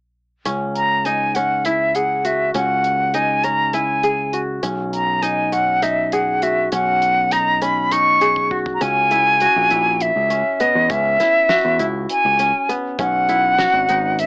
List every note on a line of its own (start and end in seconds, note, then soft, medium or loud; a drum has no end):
0.45 2.51 C#2 medium
0.45 1.36 C#4 medium
0.45 closed hi-hat medium
0.75 1.06 A#5 medium
0.75 closed hi-hat soft
1.05 1.71 D#4 medium
1.05 1.36 G#5 medium
1.05 closed hi-hat medium
1.35 2.54 C#4 medium
1.35 1.67 F#5 medium
1.35 closed hi-hat soft
1.65 3.20 E4 medium
1.65 1.97 E5 medium
1.65 closed hi-hat medium
1.95 3.32 G#4 medium
1.95 2.27 F#5 medium
1.95 closed hi-hat medium
2.25 3.71 F#4 medium
2.25 2.55 E5 medium
2.25 closed hi-hat soft
2.54 4.59 C#2 medium
2.54 3.44 C#4 medium
2.54 3.16 F#5 medium
2.54 closed hi-hat medium
2.84 closed hi-hat soft
3.14 3.80 D#4 medium
3.14 3.46 G#5 medium
3.14 closed hi-hat medium
3.44 4.62 C#4 medium
3.44 3.76 A#5 medium
3.44 closed hi-hat soft
3.73 5.28 E4 medium
3.73 4.41 G#5 medium
3.73 closed hi-hat medium
4.03 5.40 G#4 medium
4.03 closed hi-hat soft
4.33 5.79 F#4 medium
4.33 closed hi-hat soft
4.63 6.68 B1 medium
4.63 5.52 C#4 medium
4.63 closed hi-hat medium
4.93 5.24 A#5 medium
4.93 closed hi-hat soft
5.22 5.82 D#4 medium
5.22 5.54 G#5 medium
5.22 closed hi-hat medium
5.52 6.72 C#4 medium
5.52 5.84 F#5 medium
5.52 closed hi-hat soft
5.82 7.32 D#4 medium
5.82 6.14 E5 medium
5.82 closed hi-hat medium
6.12 7.49 G#4 medium
6.12 6.44 F#5 medium
6.12 closed hi-hat soft
6.42 7.89 F#4 medium
6.42 6.72 E5 medium
6.42 closed hi-hat medium
6.72 8.77 B1 medium
6.72 7.62 C#4 medium
6.72 7.34 F#5 medium
6.72 closed hi-hat medium
7.02 closed hi-hat soft
7.31 7.91 D#4 medium
7.31 7.63 A#5 medium
7.31 closed hi-hat medium
7.62 8.80 C#4 medium
7.62 7.94 B5 medium
7.62 closed hi-hat soft
7.92 9.17 D#4 medium
7.92 8.59 C#6 medium
7.92 closed hi-hat medium
8.21 9.58 G#4 medium
8.21 closed hi-hat soft
8.36 kick soft
8.51 9.41 F#4 medium
8.51 kick soft
8.66 kick medium
8.74 8.83 A#5 medium
8.81 9.47 C#2 medium
8.81 10.30 C#4 medium
8.81 10.03 G#5 medium
8.81 closed hi-hat medium
9.11 9.70 E4 medium
9.11 closed hi-hat soft
9.40 10.88 F#4 medium
9.40 closed hi-hat medium
9.56 9.69 A#1 medium
9.71 10.10 A#1 medium
9.71 11.20 E4 medium
9.71 closed hi-hat soft
10.01 10.62 E5 medium
10.01 closed hi-hat medium
10.16 10.42 C#2 medium
10.30 10.89 C#4 medium
10.30 closed hi-hat medium
10.60 12.47 B3 medium
10.60 10.93 D#5 medium
10.60 closed hi-hat soft
10.75 10.88 E2 medium
10.90 11.16 C#2 medium
10.90 12.39 C#4 medium
10.90 11.86 E5 medium
10.90 kick medium
10.90 closed hi-hat medium
11.20 11.79 E4 medium
11.20 snare soft
11.20 closed hi-hat soft
11.49 12.95 F#4 medium
11.49 snare medium
11.49 closed hi-hat medium
11.65 11.78 E2 medium
11.79 12.06 C#2 medium
11.79 13.29 E4 medium
11.79 closed hi-hat medium
12.09 12.73 G#5 medium
12.09 closed hi-hat medium
12.25 12.51 C#2 medium
12.39 12.99 C#4 medium
12.39 closed hi-hat medium
12.69 14.26 B3 medium
12.69 closed hi-hat soft
12.99 13.65 B1 medium
12.99 14.26 C#4 medium
12.99 14.21 F#5 loud
12.99 kick medium
12.99 closed hi-hat medium
13.29 13.95 E4 medium
13.29 closed hi-hat soft
13.59 14.26 F#4 medium
13.59 snare medium
13.59 closed hi-hat medium
13.74 13.87 G#1 medium
13.89 14.26 G#1 medium
13.89 14.26 D#4 medium
13.89 closed hi-hat soft
14.19 14.26 E5 medium
14.19 closed hi-hat medium